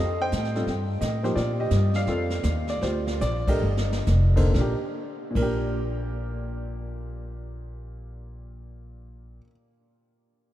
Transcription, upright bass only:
Already playing: F2
0.32 A2
0.67 G2
1.01 A2
1.36 A#2
1.71 G2
2.07 F2
2.44 D#2
2.81 D2
3.21 A#1
3.62 G1
4.07 F1
4.54 A#1
5.35 A#1

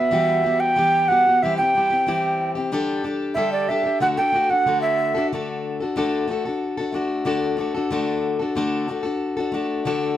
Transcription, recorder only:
Already playing: E5
0.60 G5
1.08 F#5
1.43 E5
1.57 G5
3.34 E5
3.52 D5
3.69 E5
4.01 F#5
4.17 G5
4.50 F#5
4.82 E5

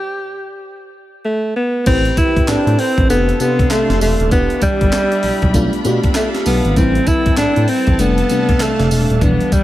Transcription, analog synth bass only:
1.86 A1
2.37 A2
2.48 A2
2.66 A2
2.98 A1
3.09 F1
3.89 F1
4.01 E1
4.20 D#1
4.31 E1
4.81 G1
5.23 B1
5.42 B1
5.54 B1
5.85 B2
6.46 B1
6.65 G#1
6.76 A1
7.26 A2
7.38 A2
7.57 A2
7.87 A1
7.99 F1
8.79 F1
8.91 E1
9.10 D#1
9.21 E1

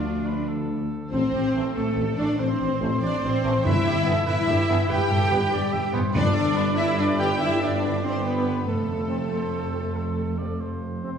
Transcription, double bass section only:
Already playing: D2
1.12 A1
1.32 A1
1.54 A1
1.75 A1
1.96 A1
2.18 A1
2.38 A1
2.61 A1
2.81 A1
3.03 A1
3.24 A1
3.44 A1
3.64 G2
3.85 G2
4.05 G2
4.26 G2
4.47 G2
4.68 G2
4.89 G2
5.10 G2
5.31 G2
5.52 G2
5.72 G2
5.94 G2
6.14 G2
8.68 F2

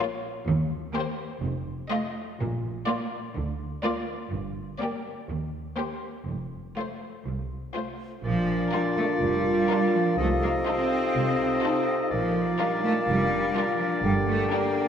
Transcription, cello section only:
0.47 D#2
1.43 F2
2.39 A#2
3.35 D3
4.32 G2
5.29 D#2
6.27 F2
7.26 C2
8.25 F3
8.73 G3
8.97 A3
9.22 G3
9.94 F3
10.18 A3
10.42 A#3
10.67 C4
12.11 F3
12.59 G3
12.83 A3
13.08 G3
13.79 F3
14.03 G3
14.27 A3
14.51 A#3

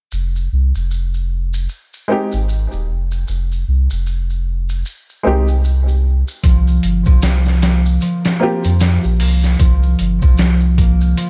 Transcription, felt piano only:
2.08 G#3 C4 D#4 G4
5.23 G#3 C4 D#4 G4
8.40 A#3 C4 F4 G4

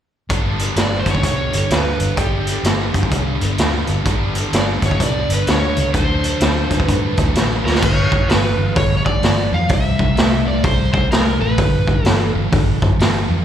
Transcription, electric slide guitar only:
0.81 D5
1.00 C5
1.10 C#5
1.73 B4
2.18 G4
4.56 D5
4.86 C#5
5.03 D5
5.34 B4
5.49 C#5
5.93 C5
6.82 B4
7.65 A#4
7.84 C#5
8.29 B4
8.77 C#5
8.97 C#5
9.05 D5
9.54 F5
9.73 E5
10.48 D5
10.64 C5
10.93 C5
11.11 A#4
11.41 B4
12.05 A4

